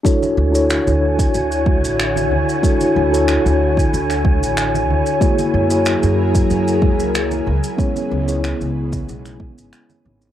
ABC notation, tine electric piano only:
X:1
M:4/4
L:1/16
Q:"Swing 16ths" 1/4=93
K:Dlyd
V:1 name="Tine electric piano"
[DEFAc]3 [DEFAc]12- [DEFAc] | [DEFAc]3 [DEFAc]12- [DEFAc] | [^A,EFGc]3 [A,EFGc]8- [A,EFGc]3 z2 | [B,CEGc]3 [B,CEGc]12- [B,CEGc] |]